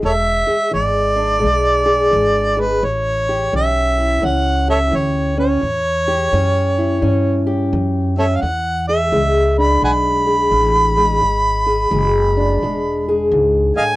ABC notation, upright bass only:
X:1
M:4/4
L:1/8
Q:"Swing" 1/4=86
K:Emix
V:1 name="Upright bass" clef=bass
E,,, z G,,,2 B,,,2 G,,,2 | A,,,2 B,,,2 C,,2 D,,2 | E,,2 F,,2 =G,,2 F,,2 | E,,2 C,,2 B,,,2 A,,,2 |
G,,,2 F,,,2 E,,,2 C,, z |]